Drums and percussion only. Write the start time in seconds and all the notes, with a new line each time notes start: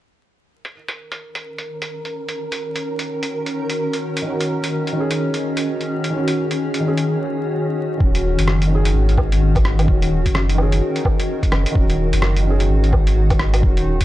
0.65 closed hi-hat
0.88 closed hi-hat
1.12 closed hi-hat
1.35 closed hi-hat
1.58 closed hi-hat
1.82 closed hi-hat
2.05 closed hi-hat
2.29 closed hi-hat
2.52 closed hi-hat
2.76 closed hi-hat
2.99 closed hi-hat
3.23 closed hi-hat
3.46 closed hi-hat
3.70 closed hi-hat
3.93 closed hi-hat
4.17 closed hi-hat
4.41 closed hi-hat
4.64 closed hi-hat
4.87 closed hi-hat
5.11 closed hi-hat
5.34 closed hi-hat
5.57 closed hi-hat
5.81 closed hi-hat
6.04 closed hi-hat
6.28 closed hi-hat
6.51 closed hi-hat
6.74 closed hi-hat
6.98 closed hi-hat
8.00 kick
8.15 closed hi-hat
8.39 closed hi-hat
8.48 cross-stick
8.62 closed hi-hat
8.85 closed hi-hat
9.09 closed hi-hat
9.18 kick, low woodblock
9.32 closed hi-hat
9.55 kick, closed hi-hat, low woodblock
9.65 cross-stick
9.79 closed hi-hat, low woodblock
9.88 kick
10.02 closed hi-hat
10.26 kick, closed hi-hat
10.35 cross-stick
10.49 closed hi-hat
10.58 low woodblock
10.72 closed hi-hat
10.96 closed hi-hat
11.05 kick, low woodblock
11.20 closed hi-hat
11.43 kick, closed hi-hat
11.52 cross-stick, low woodblock
11.66 closed hi-hat
11.75 kick
11.90 closed hi-hat
12.13 closed hi-hat
12.22 cross-stick
12.37 closed hi-hat
12.60 closed hi-hat
12.84 closed hi-hat
12.93 kick, low woodblock
13.07 closed hi-hat
13.30 kick, closed hi-hat, low woodblock
13.39 cross-stick
13.54 closed hi-hat, low woodblock
13.63 kick
13.77 closed hi-hat
14.01 kick, closed hi-hat